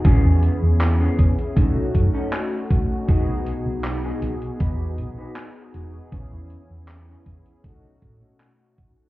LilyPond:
<<
  \new Staff \with { instrumentName = "Analog polysynth" } { \time 4/4 \key e \major \tempo 4 = 79 <b cis' e' gis'>2 <a cis' dis' fis'>2 | <b dis' fis' gis'>1 | <b cis' e' gis'>2 <a cis' dis' fis'>2 | }
  \new Staff \with { instrumentName = "Clean electric guitar" } { \time 4/4 \key e \major <b cis' gis'>8 r8. <b cis' gis'>16 r8 <cis' dis' a'>8 r16 <cis' dis' a'>16 r4 | <dis' fis' gis'>8 r8. <dis' fis' gis'>16 r8 <dis' fis' b'>8 r16 <dis' fis' b'>16 r4 | <b cis' gis'>8 r8. <b cis' gis'>16 r8 <cis' dis' a'>8 r16 <cis' dis' fis'>16 r4 | }
  \new Staff \with { instrumentName = "Fingered electric bass" } { \clef bass \time 4/4 \key e \major a,,16 e,16 r16 e,8 r16 e,16 r8 b,,16 fis,16 r4 r16 | e,,16 b,,16 r16 b,,8 r16 b,,16 r16 e,8 b,,16 r8. e,,16 r16 | a,,16 e,16 r16 e,8 r16 e,16 r8 b,,16 a,16 b,8. a,16 r16 | }
  \new DrumStaff \with { instrumentName = "Drums" } \drummode { \time 4/4 <hh bd>8 hh8 <hc hh>8 <hh bd>16 hh16 <hh bd>8 <hh bd>8 <hc hh>8 <hh bd>8 | <hh bd>8 hh8 <hc hh>8 hh16 hh16 <hh bd>8 hh8 <hc hh>8 hh8 | <hh bd>8 hh8 <hc hh>8 <hh bd>16 hh16 <hh bd>8 <hh bd>8 <hc hh>8 <hh bd>8 | }
>>